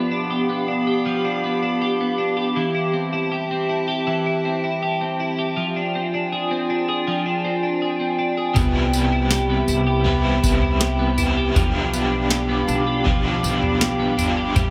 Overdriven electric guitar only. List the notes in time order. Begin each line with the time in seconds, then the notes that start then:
8.54 C3 G3 C4 E4
8.59 B4
10.04 G3 C4 E4 B4
11.17 C4 E4 B4
11.53 B3 D4 F4
11.58 G4
13.04 B3 D4 F4 G4
14.17 D4 F4 G4
14.54 A3 C4 E4
14.59 G4